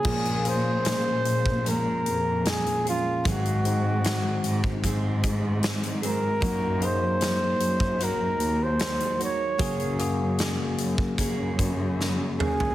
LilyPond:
<<
  \new Staff \with { instrumentName = "Flugelhorn" } { \time 4/4 \key bes \minor \tempo 4 = 76 aes'8 c''4. bes'4 aes'8 f'8 | ges'2 r4. bes'8~ | bes'8 c''4. bes'8. c''8. des''8~ | des''8 r2. aes'8 | }
  \new Staff \with { instrumentName = "Tine electric piano" } { \time 4/4 \key bes \minor <bes des' aes'>8 <bes des' aes'>2 r4. | <aes c' ges'>8 <aes c' ees'>2 r4. | <bes ees' ges'>8 <bes ees' aes'>2 r4. | <bes ges' aes'>8 <bes ges' aes'>2 r4. | }
  \new Staff \with { instrumentName = "Tine electric piano" } { \clef bass \time 4/4 \key bes \minor <bes, f>4. r2 r8 | <aes, ees>4. r2 r8 | ges4. r2 r8 | des4. r2 r8 | }
  \new Staff \with { instrumentName = "Steel-string acoustic guitar" } { \time 4/4 \key bes \minor <bes, f aes des' aes'>2 <f aes des' aes'>4. <aes des' aes'>8 | <aes, ees ges aes c' aes'>2 <ges aes c' aes'>4. <ges aes c' aes'>8 | <ges bes ees' ges'>2 <ges bes ees' ges'>4. <bes ees' ges'>8 | <ges bes des' aes'>2 <ges bes des' aes'>4. <bes des' aes'>8 | }
  \new Staff \with { instrumentName = "Cello section" } { \clef bass \time 4/4 \key bes \minor bes,4. bes,4 f,4 r8 | aes,4. aes,8 aes,2 | ges,4. ges,4 ees,4 r8 | ges,4. ges,8 ges,2 | }
  \new DrumStaff \with { instrumentName = "Drums" } \drummode { \time 4/4 <cymc bd>16 hh16 hh8 <hh sn>8 hh16 bd16 hh8 hh8 <hh sn>16 hh16 hh8 | <hh bd>16 hh16 hh8 <hh sn>8 hh16 bd16 <hh bd>8 <hh bd>8 <hh sn>16 hh16 hh8 | <hh bd>8 hh8 <hh sn>8 hh16 bd16 hh8 hh8 <hh sn>16 hh16 hh8 | <hh bd>16 hh16 hh8 <hh sn>8 hh16 bd16 <hh bd>8 <hh bd>8 sn8 toml16 tomfh16 | }
>>